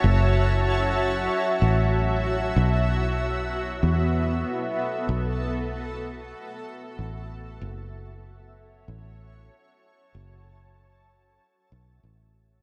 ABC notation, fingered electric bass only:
X:1
M:4/4
L:1/8
Q:1/4=95
K:F#m
V:1 name="Fingered electric bass" clef=bass
F,,,4 z A,,,3 | B,,,4 E,,2 z2 | B,,,4 z2 A,,,2 | F,,,4 A,,,2 z2 |
F,,,4 z B,,, A,,,2 |]